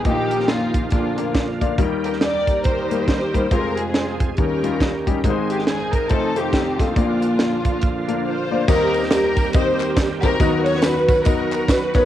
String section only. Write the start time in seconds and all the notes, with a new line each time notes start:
0.06 A#3 D#4 G4
0.49 A#3 F4
0.92 A#3 D4 F4
2.04 A#4
2.21 G4 A#4 D5
2.65 D#4 G4 C5
3.51 F4 A#4
3.77 C4 F4 G#4
4.38 C#4 G4 A#4
5.50 G4
5.66 G#4
5.92 A#4
6.10 C4 D#4 A4
6.36 C4 D#4 G4
6.80 A#3 D4 F4
8.26 F4 C5
8.69 G4 A#4
9.12 G4 A#4
9.55 G4 C5
10.23 F#4 A#4
10.66 C#5
10.83 F#4 B4
11.25 F#4 A#4
11.70 B4
11.95 B4